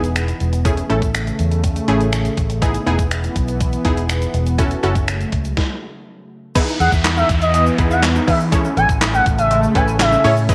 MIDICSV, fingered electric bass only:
0, 0, Header, 1, 2, 480
1, 0, Start_track
1, 0, Key_signature, 4, "major"
1, 0, Tempo, 491803
1, 638, Time_signature, 4, 2, 24, 8
1, 10296, End_track
2, 0, Start_track
2, 0, Title_t, "Fingered electric bass"
2, 0, Program_c, 0, 33
2, 0, Note_on_c, 0, 28, 87
2, 301, Note_off_c, 0, 28, 0
2, 397, Note_on_c, 0, 28, 87
2, 782, Note_off_c, 0, 28, 0
2, 878, Note_on_c, 0, 33, 87
2, 1262, Note_off_c, 0, 33, 0
2, 1360, Note_on_c, 0, 40, 83
2, 1743, Note_off_c, 0, 40, 0
2, 1838, Note_on_c, 0, 33, 90
2, 2222, Note_off_c, 0, 33, 0
2, 2319, Note_on_c, 0, 33, 92
2, 2702, Note_off_c, 0, 33, 0
2, 2798, Note_on_c, 0, 28, 84
2, 3182, Note_off_c, 0, 28, 0
2, 3279, Note_on_c, 0, 35, 88
2, 3662, Note_off_c, 0, 35, 0
2, 3758, Note_on_c, 0, 28, 87
2, 4142, Note_off_c, 0, 28, 0
2, 4237, Note_on_c, 0, 28, 92
2, 4621, Note_off_c, 0, 28, 0
2, 4719, Note_on_c, 0, 30, 84
2, 5103, Note_off_c, 0, 30, 0
2, 5198, Note_on_c, 0, 37, 84
2, 5390, Note_off_c, 0, 37, 0
2, 6638, Note_on_c, 0, 40, 103
2, 6734, Note_off_c, 0, 40, 0
2, 6756, Note_on_c, 0, 40, 93
2, 7045, Note_off_c, 0, 40, 0
2, 7120, Note_on_c, 0, 40, 92
2, 7503, Note_off_c, 0, 40, 0
2, 7599, Note_on_c, 0, 40, 94
2, 7983, Note_off_c, 0, 40, 0
2, 8080, Note_on_c, 0, 52, 97
2, 8463, Note_off_c, 0, 52, 0
2, 8558, Note_on_c, 0, 33, 101
2, 8654, Note_off_c, 0, 33, 0
2, 9040, Note_on_c, 0, 33, 94
2, 9423, Note_off_c, 0, 33, 0
2, 9519, Note_on_c, 0, 33, 93
2, 9902, Note_off_c, 0, 33, 0
2, 10000, Note_on_c, 0, 45, 96
2, 10296, Note_off_c, 0, 45, 0
2, 10296, End_track
0, 0, End_of_file